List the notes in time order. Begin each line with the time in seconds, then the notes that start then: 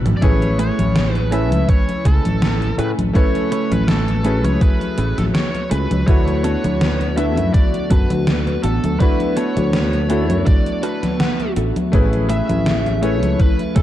Already playing: A1 D3 A3 B3 D4 E4 F#4 A4
0.06 closed hi-hat, mid tom, high conga
0.17 D5
0.21 A1 C#3 A3 C#4 E4 G#4 B4 C#5 G#5, kick, closed hi-hat, high conga
0.42 closed hi-hat, high conga
0.59 A3 C#4 E4 G#4 C#5, closed hi-hat
0.79 A1, closed hi-hat, high conga
0.96 snare, closed hi-hat, high conga
1.15 B4, closed hi-hat, high conga
1.31 A3 C#4 E4 G#4 A4 B4 E5, closed hi-hat
1.52 C#2, closed hi-hat, high conga
1.69 C#5, kick, closed hi-hat, high conga
1.89 closed hi-hat, high conga
2.05 C#2 A3 C#4 E4 G#4 A4, kick, closed hi-hat
2.25 A1, closed hi-hat, high conga
2.42 snare, closed hi-hat, high conga
2.62 closed hi-hat, high conga
2.78 A2 A3 C#4 E4 G#4 B4, closed hi-hat
2.98 A1, closed hi-hat, high conga
3.13 A3 C#4 E4 F#4 A4 B4 C#5, kick, closed hi-hat, high conga
3.35 closed hi-hat, high conga
3.51 A3 C#4 E4 B4 C#5, closed hi-hat
3.71 A1 B4, closed hi-hat, high conga
3.88 A4, snare, closed hi-hat, high conga
4.08 closed hi-hat, high conga
4.23 A3 C#4 E4 G#4 B4, closed hi-hat
4.45 C#2 C#5, closed hi-hat, high conga
4.61 B4, kick, closed hi-hat, high conga
4.81 closed hi-hat, high conga
4.97 A1 A3 C#4 E4 G#4, closed hi-hat
5.18 A1 A4, snare, closed hi-hat, high conga
5.34 C#5, snare, closed hi-hat, high conga
5.55 closed hi-hat, high conga
5.71 C#2 A3 C#4 E4 G#4 B4, closed hi-hat
5.91 C#2, closed hi-hat, high conga
6.06 D2 D3 A3 B3 D4 E4 F#4 B4 C#5, kick, closed hi-hat
6.28 closed hi-hat, high conga
6.44 B3 D4 F#4 A4 C#5, closed hi-hat
6.64 D2, closed hi-hat, high conga
6.81 snare, closed hi-hat, high conga
7.01 closed hi-hat, high conga
7.16 A3 B3 D4 E4 F#4 A4 B4 E5, closed hi-hat
7.37 F#2, closed hi-hat, high conga
7.54 D5, kick, closed hi-hat, high conga
7.74 closed hi-hat, high conga
7.90 F#2 B3 D4 F#4 A4 B4, kick, closed hi-hat
8.10 D2, closed hi-hat, high conga
8.27 snare, closed hi-hat, high conga
8.47 closed hi-hat, high conga
8.63 A1 B3 D4 F#4 A4, closed hi-hat
8.84 D2, closed hi-hat, high conga
8.99 A3 D4 E4 F#4 B4, kick, closed hi-hat, high conga
9.20 closed hi-hat, high conga
9.36 B3 D4 F#4 A4 C#5, closed hi-hat
9.57 D2, closed hi-hat, high conga
9.73 snare, closed hi-hat, high conga
9.93 closed hi-hat, high conga
10.09 A3 B3 D4 E4 F#4 A4, closed hi-hat
10.30 F#2, closed hi-hat, high conga
10.46 D5, kick, closed hi-hat, high conga
10.66 closed hi-hat, high conga
10.83 B3 D4 F#4 A4 B4 A5, closed hi-hat
11.03 snare, closed hi-hat, high conga
11.20 F#5, snare, closed hi-hat, high conga
11.40 E5, closed hi-hat, high conga
11.56 A1 B3 D4 F#4 A4 E5, closed hi-hat
11.76 closed hi-hat, high conga
11.92 A1 C#3 A3 C#4 E4 G#4 B4, kick, closed hi-hat
12.13 closed hi-hat, high conga
12.29 A3 C#4 E4 G#4 E5, closed hi-hat
12.49 A1, closed hi-hat, high conga
12.66 snare, closed hi-hat, high conga
12.86 closed hi-hat, high conga
13.01 A3 C#4 E4 G#4 A4 B4 C#5, closed hi-hat
13.22 C#2, closed hi-hat, high conga
13.40 B4, kick, closed hi-hat, high conga
13.59 closed hi-hat, high conga
13.76 C#2 A3 C#4 E4 G#4 A4, kick, closed hi-hat